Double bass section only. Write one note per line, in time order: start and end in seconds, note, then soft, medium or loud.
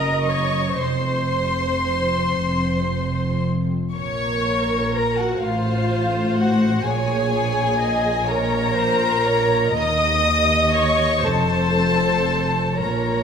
0.00 0.81 F#1 medium
0.81 2.36 F1 soft
2.38 3.72 F1 soft
3.94 5.39 A#1 soft
5.43 6.84 A1 medium
6.88 9.75 A#1 medium
9.78 11.22 D#2 medium
11.25 12.82 F1 medium
12.81 13.23 A#1 soft